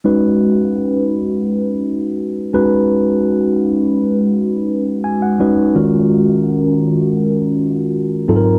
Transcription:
\new Staff \with { instrumentName = "Tine electric piano" } { \time 4/4 \key des \mixolydian \tempo 4 = 84 << { r1 | r2. aes''16 ges''8. | r1 | } \\ { <aes des' ees' ges' ces''>4. r2 <aes des' ees' ges' ces''>8~ | <aes des' ees' ges' ces''>4 r2 r8 <aes des' ees' ges' ces''>8 | <ees aes des' f' ges' bes'>4. r2 <aes, ges c' ees' f' a' bes'>8 | } >> }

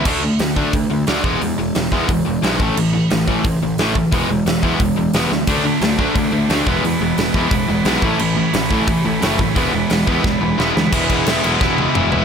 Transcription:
<<
  \new Staff \with { instrumentName = "Distorted electric guitar" } { \time 4/4 \key e \mixolydian \tempo 4 = 177 r1 | r1 | r1 | r1 |
<d fis a d'>8 <d fis a d'>8 <d fis a d'>8 <d fis a d'>8 <d fis a d'>8 <d fis a d'>8 <d fis a d'>8 <e gis b e'>8 | <e gis b e'>8 <e gis b e'>8 <e gis b e'>8 <e gis b e'>8 <e gis b e'>8 <e gis b e'>8 <e gis b e'>8 <a, e a cis' e'>8 | <a, e a cis' e'>8 <a, e a cis' e'>8 <a, e a cis' e'>8 <a, e a cis' e'>8 <a, e a cis' e'>8 <a, e a cis' e'>8 <a, e a cis' e'>8 <a, e a cis' e'>8 | <e gis b e'>8 <e gis b e'>8 <e gis b e'>8 <e gis b e'>8 <e gis b e'>8 <e gis b e'>8 <e gis b e'>8 <e gis b e'>8 |
<e gis b e' gis'>2~ <e gis b e' gis'>8 <e gis b e' gis'>8 <e gis b e' gis'>4 | }
  \new Staff \with { instrumentName = "Overdriven electric guitar" } { \clef bass \time 4/4 \key e \mixolydian <d a d'>8 <d a>8 <d a>8 <d a d'>8 <d a>8 <d a>8 <d a d'>8 <e gis b>8 | <e gis>8 <e gis>8 <e gis>8 <e gis b>8 <e gis>8 <e gis>8 <e gis b>8 <a, e a>8 | <a, e>8 <a, e>8 <a, e>8 <a, e a>8 <a, e>8 <a, e>8 <a, e a>8 <a, e>8 | <e gis b>8 <e gis>8 <e gis>8 <e gis b>8 <e gis>8 <e gis>8 <e gis b>8 <e gis>8 |
<d a d'>8 <d a>8 <d a>8 <d a d'>8 <d a>8 <d a>8 <d a d'>8 <e gis b>8 | <e gis>8 <e gis>8 <e gis>8 <e gis b>8 <e gis>8 <e gis>8 <e gis b>8 <a, e a>8 | <a, e>8 <a, e>8 <a, e>8 <a, e a>8 <a, e>8 <a, e>8 <a, e a>8 <a, e>8 | <e gis b>8 <e gis>8 <e gis>8 <e gis b>8 <e gis>8 <e gis>8 <e gis b>8 <e gis>8 |
<e gis b e'>4 <e gis b e'>8 <e gis b e'>8 <e gis b e'>4 <e gis b e'>8 <e gis b e'>8 | }
  \new Staff \with { instrumentName = "Overdriven electric guitar" } { \clef bass \time 4/4 \key e \mixolydian <d a d'>8 <d a>8 <d a>8 <d a d'>8 <d a>8 <d a>8 <d a d'>8 <e gis b>8 | <e gis>8 <e gis>8 <e gis>8 <e gis b>8 <e gis>8 <e gis>8 <e gis b>8 <a, e a>8 | <a, e>8 <a, e>8 <a, e>8 <a, e a>8 <a, e>8 <a, e>8 <a, e a>8 <a, e>8 | <e gis b>8 <e gis>8 <e gis>8 <e gis b>8 <e gis>8 <e gis>8 <e gis b>8 <e gis>8 |
<d a d'>8 <d a>8 <d a>8 <d a d'>8 <d a>8 <d a>8 <d a d'>8 <e gis b>8 | <e gis>8 <e gis>8 <e gis>8 <e gis b>8 <e gis>8 <e gis>8 <e gis b>8 <a, e a>8 | <a, e>8 <a, e>8 <a, e>8 <a, e a>8 <a, e>8 <a, e>8 <a, e a>8 <a, e>8 | <e gis b>8 <e gis>8 <e gis>8 <e gis b>8 <e gis>8 <e gis>8 <e gis b>8 <e gis>8 |
<e gis b e'>4 <e gis b e'>8 <e gis b e'>8 <e gis b e'>4 <e gis b e'>8 <e gis b e'>8 | }
  \new Staff \with { instrumentName = "Picked electric bass" } { \clef bass \time 4/4 \key e \mixolydian d,4 d,4 d,8 d,8 d,8 e,,8 | e,8 e,,8 e,,8 e,8 e,,8 e,,8 b,,8 a,,8 | a,,4 a,,4 a,,8 a,,8 a,,4 | e,,8 e,,8 e,,8 e,8 e,,8 e,,8 e,,8 d,8 |
d,4 d,4 d,8 d,8 d,8 e,,8 | e,8 e,,8 e,,8 e,8 e,,8 e,,8 b,,8 a,,8 | a,,4 a,,4 a,,8 a,,8 fis,,4 | e,,8 e,,8 e,,8 e,8 e,,8 e,,8 e,,8 d,8 |
e,,8 e,,8 e,,8 e,,8 e,,4 e,,8 e,,8 | }
  \new DrumStaff \with { instrumentName = "Drums" } \drummode { \time 4/4 <cymc bd>4 <hho sn>8 bd8 <hho bd>4 <hho sn>8 bd8 | hho4 <hho sn>8 bd8 <hho bd>4 <hho sn>8 bd8 | cymc4 <hho sn>8 bd8 <hho bd>4 <hho sn>8 bd8 | <hho bd>4 <hho sn>8 bd8 <hho bd>4 <hho sn>8 sn8 |
<cymc hho bd>4 <hho sn>8 bd8 <hho bd>4 <hho sn>8 bd8 | hho4 <hho sn>8 bd8 <hho bd>4 <hho sn>8 bd8 | cymc4 <hho sn>8 bd8 <hho bd>4 <hho sn>8 bd8 | <hho bd>4 <hho sn>8 bd8 <bd sn>4 sn8 sn8 |
<cymc bd>8 <cymc bd>8 <cymc sn>8 cymc8 <bd sn>8 tommh8 toml8 tomfh8 | }
>>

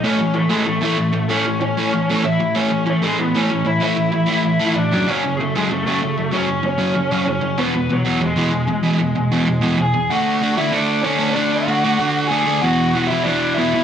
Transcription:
<<
  \new Staff \with { instrumentName = "Lead electric guitar" } { \time 4/4 \key a \major \tempo 4 = 190 << { cis''4 a'8 gis'8 a'8 a'4. | cis''4 cis''2 e''4 | cis''4 a'8 gis'8 b'8 cis''4 e''8 | e''2. d''4 |
cis''8.~ cis''32 gis'32 a'8 gis'8 a'8 a'4. | cis''4 cis''2 cis''4 | b'4 fis'4 gis'2~ | gis'2. gis''4 |
fis''4. e''8 d''4 cis''4 | d''8 fis''2~ fis''8 gis''4 | fis''4. e''8 d''4 e''4 | } \\ { cis'4 a8 gis8 a8 a4. | cis'4 cis'2 e'4 | cis'4 a8 gis8 b8 cis'4 e'8 | e'2. d'4 |
cis'4 a8 gis8 a8 a4. | cis'4 cis'2 cis'4 | b4 fis4 gis2~ | gis2. gis'4 |
fis'4. e'8 d'4 cis'4 | d'8 fis'2~ fis'8 gis'4 | fis'4. e'8 d'4 e'4 | } >> }
  \new Staff \with { instrumentName = "Overdriven electric guitar" } { \clef bass \time 4/4 \key a \major <a, e a>8 <a, e>8 <a, e>8 <a, e a>8 <a, e>8 <a, e a>8 <a, e>8 <a, e>8 | <a, e a>8 <a, e>8 <a, e>8 <a, e a>8 <a, e>8 <a, e a>8 <a, e>8 <a, e>8 | <a, e a>8 <a, e>8 <a, e>8 <a, e a>8 <a, e>8 <a, e a>8 <a, e>8 <a, e>8 | <a, e a>8 <a, e>8 <a, e>8 <a, e a>8 <a, e>8 <a, e a>8 <a, e>8 <fis, cis fis>8 |
<fis, cis fis>8 <fis, cis>8 <fis, cis>8 <fis, cis fis>8 <fis, cis>8 <fis, cis fis>8 <fis, cis>8 <fis, cis>8 | <fis, cis fis>8 <fis, cis>8 <fis, cis>8 <fis, cis fis>8 <fis, cis>8 <fis, cis fis>8 <fis, cis>8 <fis, cis>8 | <e, b, e>8 <e, b,>8 <e, b,>8 <e, b, e>8 <e, b,>8 <e, b, e>8 <e, b,>8 <e, b,>8 | <e, b, e>8 <e, b,>8 <e, b,>8 <e, b, e>8 <e, b,>8 <e, b, e>8 <e, b,>8 <e, b,>8 |
<d a d'>4 <d a d'>8 <d a d'>8 <d a d'>4 <d a d'>8 <d a d'>8 | <d a d'>4 <d a d'>8 <d a d'>8 <d a d'>4 <d a d'>8 <d a d'>8 | <e, b, e>4 <e, b, e>8 <e, b, e>8 <e, b, e>4 <e, b, e>8 <e, b, e>8 | }
>>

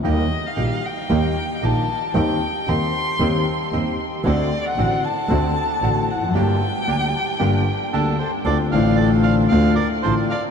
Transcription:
<<
  \new Staff \with { instrumentName = "Bandoneon" } { \time 4/4 \key g \minor \tempo 4 = 114 r1 | r1 | r1 | r2. a'8 c''8 |
\key d \minor d''8 f''8 d''8 f''8 f''8 d''8 c''8 f''8 | }
  \new Staff \with { instrumentName = "Violin" } { \time 4/4 \key g \minor ees''8. f''8. g''4. a''4 | g''4 c'''2 r4 | d''8. fis''8. a''2 fis''8 | g''2. d'8 a'8 |
\key d \minor a'8 d''8 a'8 d''8 d''8 bes'8 a'8 d''8 | }
  \new Staff \with { instrumentName = "Bandoneon" } { \time 4/4 \key g \minor <bes ees' g'>8 r8 <bes ees' g'>8 r8 <bes ees' g'>8 r8 <bes ees' g'>8 r8 | <c' ees' g'>8 r8 <c' ees' g'>8 r8 <c' ees' g'>8 r8 <c' ees' g'>8 r8 | <c' d' fis'>8 r8 <c' d' fis'>8 r8 <c' d' fis'>8 r8 <c' d' fis'>8 r8 | <bes d' g'>8 r8 <bes d' g'>8 r8 <bes d' g'>8 r8 <bes d' g'>8 r8 |
\key d \minor <c' d' f'>8 <c' d' f'>4. <c' d' f'>8 r8 <c' d' f'>8 r8 | }
  \new Staff \with { instrumentName = "Grand piano" } { \clef bass \time 4/4 \key g \minor <ees, ees g bes g'>8 r8 <bes,, bes, ees g bes g'>8 r8 <ees, ees g bes g'>8 r8 <bes,, bes, ees g bes g'>8 r8 | <ees, ees g c' g'>8 r8 <ees, ees g c' g'>8 r8 <ees, ees g c' g'>8 r8 <ees, ees g c' g'>8 r8 | <d, d a c' fis'>8 r8 <a,, a, d a c' fis'>8 r8 <d, d a c' fis'>8 r8 <a,, a, d a c' fis'>8 r32 e,32 f,32 fis,32 | <g,, g, d g bes g'>8 r8 <d, d g bes g'>8 r8 <g,, g, d g bes g'>8 r8 <d, d g bes g'>8 r8 |
\key d \minor <d, d a c' f'>8 <a,, a, d a c' f'>4. <d, d a c' f'>8 r8 <a,, a, d a c' f'>8 r8 | }
  \new Staff \with { instrumentName = "Double bass" } { \clef bass \time 4/4 \key g \minor ees,8 r8 bes,,8 r8 ees,8 r8 bes,,8 r8 | ees,8 r8 ees,8 r8 ees,8 r8 ees,8 r8 | d,8 r8 a,,8 r8 d,8 r8 a,,8 r8 | r1 |
\key d \minor d,8 a,,4. d,8 r8 a,,8 r8 | }
>>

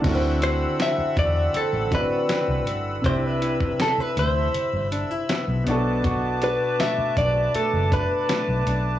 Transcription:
<<
  \new Staff \with { instrumentName = "Accordion" } { \time 4/4 \key d \mixolydian \tempo 4 = 80 << { <b'' e'''>1~ | <b'' e'''>2.~ <b'' e'''>8 <a'' d'''>8~ | <a'' d'''>1 | } \\ { <c' fis''>1 | e''2.~ e''8 b'8~ | b'1 | } >> }
  \new Staff \with { instrumentName = "Clean electric guitar" } { \time 4/4 \key d \mixolydian r8 c''8 e''8 d''8 a'8 b'4 r8 | c''16 b'8. a'16 b'16 c''4 r4. | r8 b'8 e''8 d''8 a'8 b'4 r8 | }
  \new Staff \with { instrumentName = "Grand piano" } { \time 4/4 \key d \mixolydian <d c' e' fis' ais' c''>2~ <d c' e' fis' ais' c''>8 <d c' e' fis' d''>4. | <c c' d' e' g'>2.~ <c c' d' e' g'>8 <b, b d' fis' a'>8~ | <b, b d' fis' a'>2.~ <b, b d' fis' a'>8 r8 | }
  \new Staff \with { instrumentName = "Nylon-string guitar" } { \time 4/4 \key d \mixolydian d8 fis'8 c'8 fis'8 c'8 fis'8 c'8 fis'8 | <c g'>8 e'4 e'4 d'16 e'16 b8 b,8 | <b, fis'>8 d'8 a8 d'8 a8 d'8 a8 d'8 | }
  \new Staff \with { instrumentName = "Fingered electric bass" } { \clef bass \time 4/4 \key d \mixolydian d,4 r8 e,8 r16 a,,8 r8 c,16 g,,8 | c,4 r8 d,8 r16 g,,8 r8 b,,16 b,,8~ | b,,4 r8 b,,8 r16 fis,,8 r8 b,,16 b,,8 | }
  \new DrumStaff \with { instrumentName = "Drums" } \drummode { \time 4/4 <cymc hh bd>8 hh8 <hh sn>8 <hh bd>8 hh8 <hh bd>8 <hh sn>8 hh8 | <hh bd>8 hh16 bd16 <hh sn>8 hh8 hh8 hh8 <hh sn>8 hh8 | <hh bd>8 hh8 <hh sn>8 <hh bd>8 hh8 <hh bd>8 <hh sn>8 hh8 | }
>>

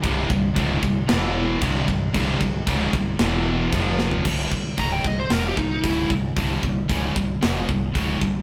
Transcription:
<<
  \new Staff \with { instrumentName = "Lead electric guitar" } { \time 4/4 \tempo 4 = 114 r1 | r1 | r4 bes''16 g''16 ees''16 c''16 bes'16 g'16 ees'8 e'8 r8 | r1 | }
  \new Staff \with { instrumentName = "Distorted electric guitar" } { \clef bass \time 4/4 <c, g, c>8 <c, g,>8 <des, aes, des>8 <c, g,>8 <e, b, e>4 <c, g, c>8 <c, g,>8 | <c, g, c>8 <c, g,>8 <des, aes, des>8 <c, g,>8 <e, b, e>4 <f, c f>4 | <c, g, c>8 <c, g,>8 <des, aes, des>8 <c, g,>8 <e, b, e>8 <c, g,>8 <des, aes, des>8 <c, g,>8 | <c, g, c>8 <c, g,>8 <des, aes, des>8 <c, g,>8 <e, b, e>8 <c, g,>8 <des, aes, des>8 <c, g,>8 | }
  \new Staff \with { instrumentName = "Distorted electric guitar" } { \clef bass \time 4/4 <c, g, c>8 <c, g,>8 <des, aes, des>8 <c, g,>8 <e, b, e>4 <c, g, c>8 <c, g,>8 | <c, g, c>8 <c, g,>8 <des, aes, des>8 <c, g,>8 <e, b, e>4 <f, c f>4 | <c, g, c>8 <c, g,>8 <des, aes, des>8 <c, g,>8 <e, b, e>8 <c, g,>8 <des, aes, des>8 <c, g,>8 | <c, g, c>8 <c, g,>8 <des, aes, des>8 <c, g,>8 <e, b, e>8 <c, g,>8 <des, aes, des>8 <c, g,>8 | }
  \new Staff \with { instrumentName = "Overdriven electric guitar" } { \clef bass \time 4/4 <c, g, c>8 <c, g,>8 <des, aes, des>8 <c, g,>8 <e, b, e>4 <c, g, c>8 <c, g,>8 | <c, g, c>8 <c, g,>8 <des, aes, des>8 <c, g,>8 <e, b, e>4 <f, c f>4 | r1 | r1 | }
  \new Staff \with { instrumentName = "Upright bass" } { \clef bass \time 4/4 c,,8 c,,8 des,,8 c,,8 e,,4 c,,8 c,,8 | c,,8 c,,8 des,,8 c,,8 e,,4 f,,4 | c,,8 c,,8 des,,8 c,,8 e,,8 c,,8 des,,8 c,,8 | c,,8 c,,8 des,,8 c,,8 e,,8 c,,8 des,,8 c,,8 | }
  \new DrumStaff \with { instrumentName = "Drums" } \drummode { \time 4/4 <cymc bd>8 bd8 <cymc bd>8 bd8 <cymc sn>4 <cymc bd>8 bd8 | <cymc bd>8 bd8 <cymc bd>8 bd8 <cymc sn>4 <cymc bd>8 sn16 tomfh16 | <cymc bd>8 bd8 <hho bd>8 bd8 <hho sn>8 bd8 <hho bd>8 bd8 | <hho bd>8 bd8 <hho bd>8 bd8 <hho sn>8 bd8 <hho bd>8 bd8 | }
>>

